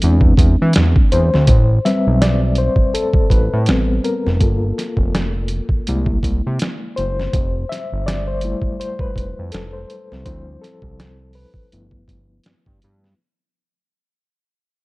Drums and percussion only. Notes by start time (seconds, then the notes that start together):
0.02 closed hi-hat
0.21 kick
0.37 kick, closed hi-hat
0.73 snare, closed hi-hat
0.96 kick
1.12 closed hi-hat
1.34 snare
1.47 kick, closed hi-hat
1.85 snare, closed hi-hat
2.22 snare, closed hi-hat
2.55 closed hi-hat
2.76 kick
2.95 closed hi-hat
3.14 kick
3.30 kick, closed hi-hat
3.66 snare, closed hi-hat
4.04 closed hi-hat
4.27 snare
4.41 kick, closed hi-hat
4.78 snare, closed hi-hat
4.97 kick
5.15 snare, closed hi-hat
5.48 closed hi-hat
5.69 kick
5.87 closed hi-hat
6.06 kick
6.23 kick, closed hi-hat
6.59 snare, closed hi-hat
6.97 closed hi-hat
7.20 snare
7.33 kick, closed hi-hat
7.72 snare, closed hi-hat
8.08 snare, closed hi-hat
8.41 closed hi-hat
8.62 kick
8.81 closed hi-hat
8.99 kick
9.16 kick, closed hi-hat
9.52 snare, closed hi-hat
9.90 closed hi-hat
10.12 snare
10.26 kick, closed hi-hat
10.64 snare, closed hi-hat
10.82 kick
11.00 snare, closed hi-hat
11.33 open hi-hat
11.54 kick
11.72 closed hi-hat
11.91 kick
12.08 kick, closed hi-hat
12.44 snare, closed hi-hat
12.66 kick
12.82 closed hi-hat
13.04 snare